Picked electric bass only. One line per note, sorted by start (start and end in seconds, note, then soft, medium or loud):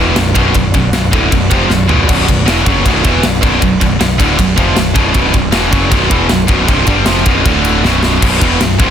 0.00 0.15 E1 medium
0.16 0.34 B0 medium
0.36 0.54 B0 medium
0.55 0.73 B0 medium
0.74 0.92 B0 medium
0.92 1.11 B0 medium
1.12 1.30 D1 medium
1.32 1.50 B0 medium
1.51 1.68 F1 loud
1.68 1.87 B0 medium
1.88 2.07 B0 loud
2.09 2.26 B0 loud
2.28 2.46 B0 loud
2.46 2.64 E1 loud
2.66 2.84 F#1 medium
2.85 3.03 B0 loud
3.05 3.22 E1 medium
3.23 3.41 B0 medium
3.42 3.60 B0 loud
3.62 3.80 B0 medium
3.81 3.98 B0 medium
3.99 4.17 B0 medium
4.20 4.37 D1 loud
4.38 4.56 B0 medium
4.57 4.75 F1 medium
4.76 4.94 B0 medium
4.96 5.14 B0 loud
5.15 5.33 B0 medium
5.34 5.52 B0 loud
5.52 5.71 E1 loud
5.72 5.90 F#1 medium
5.91 6.09 B0 loud
6.11 6.29 E1 medium
6.30 6.48 B0 medium
6.49 6.67 B0 loud
6.68 6.86 C1 loud
6.87 7.05 G1 loud
7.05 7.24 F1 loud
7.26 7.44 B0 medium
7.45 7.81 D1 loud
7.82 8.18 B0 loud
8.22 8.40 B0 medium
8.41 8.59 E1 loud
8.59 8.77 B0 medium
8.79 8.90 C1 loud